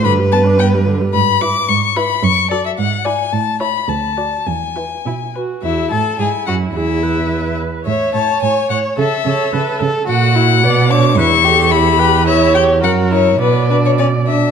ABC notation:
X:1
M:2/4
L:1/16
Q:1/4=108
K:Glyd
V:1 name="Violin"
b2 a2 g2 z2 | [K:A] b2 d'2 c'2 b2 | c'2 d e f2 g2 | a2 b2 a4 |
g6 z2 | e2 a2 g2 f2 | e6 z2 | e2 a2 g2 f2 |
e6 z2 | [K:Bm] f6 d'2 | c'4 b4 | e2 g2 f2 c2 |
B2 B c d2 e2 |]
V:2 name="Violin"
B8 | [K:A] z2 B2 z2 B2 | z2 A2 z2 d2 | z2 c2 z2 d2 |
z2 B2 z2 B2 | E2 A2 G2 F2 | E6 z2 | c2 c2 c2 c2 |
A2 A2 A2 A2 | [K:Bm] F2 E2 B,2 D2 | E2 G2 E2 G2 | E2 G2 F2 E2 |
B,2 D2 C2 D2 |]
V:3 name="Viola"
D, G, B, D B, G, D, G, | [K:A] z2 E2 z2 E2 | z2 F2 z2 E2 | z2 E2 z2 F2 |
z2 E2 E2 F2 | z4 E4 | G2 B6 | c8 |
A2 c2 B2 A2 | [K:Bm] F4 d2 c2 | B2 A2 G2 B2 | c4 ^A4 |
d6 z2 |]
V:4 name="Cello" clef=bass
G,,8 | [K:A] G,,4 G,,4 | F,,4 G,,4 | A,,4 D,,4 |
E,,4 B,,4 | E,,2 A,,2 G,,2 F,,2 | E,,6 z2 | A,,2 A,,2 A,,2 A,,2 |
C,2 C,2 C,2 C,2 | [K:Bm] ^A,,4 B,,4 | E,,8- | E,,4 F,,4 |
B,,6 z2 |]